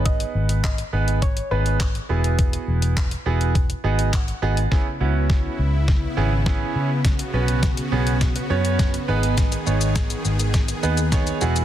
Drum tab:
HH |xx-xxx-xxx-xxx-x|xx-xxx-xxx-xxx-x|----------------|xx-xxx-xxx-xxx-x|
SH |----------------|----------------|----------------|----------------|
CP |----x-------x---|----x-------x---|----------------|----------------|
SD |----------------|----------------|o---o---o---o---|o---o---o---o---|
BD |o---o---o---o---|o---o---o---o---|o---o---o---o---|o---o---o---o---|

HH |xx-xxx-xxx-xxx-x|
SH |xxxxxxxxxxxxxxxx|
CP |----------------|
SD |o---o---o---o---|
BD |o---o---o---o---|